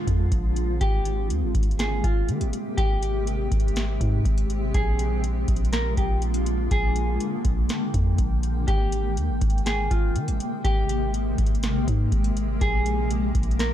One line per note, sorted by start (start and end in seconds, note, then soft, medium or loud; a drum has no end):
0.00 0.77 D3 medium
0.00 0.77 G#3 medium
0.00 0.79 C4 medium
0.00 0.77 F4 medium
0.07 0.31 F2 loud
0.07 kick medium
0.07 closed hi-hat medium
0.32 0.79 A#1 loud
0.32 kick medium
0.32 closed hi-hat medium
0.56 closed hi-hat medium
0.81 1.31 G#1 loud
0.81 4.70 C3 medium
0.81 8.64 G#3 medium
0.81 2.76 A#3 medium
0.81 4.70 G4 medium
0.81 1.27 G4 loud
0.81 kick loud
0.81 closed hi-hat medium
1.05 closed hi-hat medium
1.30 1.44 D#2 loud
1.30 closed hi-hat medium
1.42 1.54 G#1 loud
1.55 2.02 G#1 loud
1.55 kick medium
1.55 closed hi-hat medium
1.63 closed hi-hat medium
1.71 closed hi-hat soft
1.79 2.03 G#4 medium
1.79 snare loud
1.79 closed hi-hat medium
2.04 2.30 G#1 loud
2.04 2.27 F4 medium
2.04 kick medium
2.04 closed hi-hat medium
2.28 2.42 D#3 medium
2.28 closed hi-hat medium
2.41 2.52 G#1 medium
2.41 closed hi-hat medium
2.53 closed hi-hat medium
2.77 3.49 G#1 loud
2.77 4.72 C4 medium
2.77 3.24 G4 loud
2.77 kick loud
2.77 closed hi-hat medium
3.03 closed hi-hat medium
3.27 closed hi-hat medium
3.52 3.99 G#1 loud
3.52 kick loud
3.52 closed hi-hat medium
3.60 closed hi-hat medium
3.68 closed hi-hat soft
3.76 snare loud
3.76 closed hi-hat medium
4.01 4.24 G#2 loud
4.01 kick medium
4.01 closed hi-hat medium
4.25 4.72 G#1 loud
4.25 kick medium
4.25 closed hi-hat medium
4.38 closed hi-hat medium
4.50 closed hi-hat medium
4.74 5.45 A#1 loud
4.74 8.64 D3 medium
4.74 13.73 A#3 medium
4.74 6.69 F4 medium
4.74 5.21 G#4 medium
4.74 kick loud
4.74 closed hi-hat medium
4.99 closed hi-hat medium
5.24 closed hi-hat medium
5.48 5.95 A#1 loud
5.48 kick medium
5.48 closed hi-hat medium
5.56 closed hi-hat medium
5.65 closed hi-hat soft
5.73 5.96 A#4 medium
5.73 snare loud
5.73 closed hi-hat medium
5.97 6.68 A#1 loud
5.97 6.21 G4 medium
5.97 kick medium
5.97 closed hi-hat medium
6.22 closed hi-hat medium
6.34 closed hi-hat medium
6.46 closed hi-hat medium
6.71 7.18 A#1 loud
6.71 7.18 G#4 loud
6.71 10.61 G5 medium
6.71 kick loud
6.71 closed hi-hat medium
6.96 closed hi-hat medium
7.20 closed hi-hat medium
7.45 7.69 A#1 loud
7.45 kick medium
7.45 closed hi-hat medium
7.69 snare loud
7.69 closed hi-hat medium
7.94 8.18 F2 loud
7.94 kick medium
7.94 closed hi-hat medium
8.18 8.66 A#1 loud
8.18 kick medium
8.18 closed hi-hat medium
8.43 closed hi-hat medium
8.68 9.18 G#1 loud
8.68 12.57 C3 medium
8.68 13.73 G#3 medium
8.68 9.14 G4 loud
8.68 kick loud
8.68 closed hi-hat medium
8.92 closed hi-hat medium
9.17 9.31 D#2 medium
9.17 closed hi-hat medium
9.29 9.41 G#1 loud
9.41 9.89 G#1 loud
9.41 kick medium
9.41 closed hi-hat medium
9.50 closed hi-hat medium
9.58 closed hi-hat soft
9.66 9.89 G#4 medium
9.66 snare loud
9.66 closed hi-hat medium
9.91 10.17 G#1 loud
9.91 10.14 F4 medium
9.91 kick medium
9.91 closed hi-hat medium
10.15 10.29 D#3 medium
10.15 closed hi-hat medium
10.28 10.39 G#1 loud
10.28 closed hi-hat medium
10.40 closed hi-hat medium
10.64 11.35 G#1 loud
10.64 12.59 G4 medium
10.64 11.11 G4 loud
10.64 kick loud
10.64 closed hi-hat medium
10.89 closed hi-hat medium
11.14 closed hi-hat medium
11.38 11.86 G#1 loud
11.38 kick medium
11.38 closed hi-hat medium
11.46 closed hi-hat medium
11.55 closed hi-hat soft
11.63 snare loud
11.63 closed hi-hat medium
11.88 12.11 G#2 loud
11.88 kick medium
11.88 closed hi-hat medium
12.12 12.59 G#1 loud
12.12 kick medium
12.12 closed hi-hat medium
12.24 closed hi-hat medium
12.37 closed hi-hat medium
12.61 13.32 A#1 loud
12.61 13.73 D3 medium
12.61 13.73 F4 medium
12.61 13.08 G#4 medium
12.61 kick loud
12.61 closed hi-hat medium
12.86 closed hi-hat medium
13.11 closed hi-hat medium
13.35 13.73 A#1 loud
13.35 kick medium
13.35 closed hi-hat medium
13.43 closed hi-hat medium
13.51 closed hi-hat soft
13.59 13.73 A#4 medium
13.59 snare loud
13.59 closed hi-hat medium